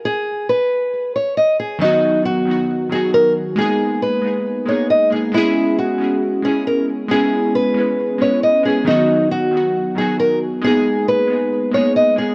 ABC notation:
X:1
M:4/4
L:1/8
Q:1/4=136
K:B
V:1 name="Nylon-string guitar"
G2 B3 c d G | D2 F3 G A z | G2 B3 c d G | E2 F3 G A z |
G2 B3 c d G | D2 F3 G A z | G2 B3 c d G |]
V:2 name="Synth keys"
z8 | [D,F,B,DF]3 [D,F,B,DF]2 [D,F,B,DF]3 | [G,A,B,DG]3 [G,B,DG]2 [G,A,B,DG]2 [G,A,B,DG] | [G,B,CEG]3 [G,B,CEG]2 [G,B,CEG]3 |
[G,B,CEG]3 [G,B,CEB]2 [G,B,CEB]2 [G,B,CEG] | [D,F,B,DF]3 [D,F,B,DF]2 [D,F,B,DF]3 | [G,A,B,DG]3 [G,B,DG]2 [G,A,B,DG]2 [G,A,B,DG] |]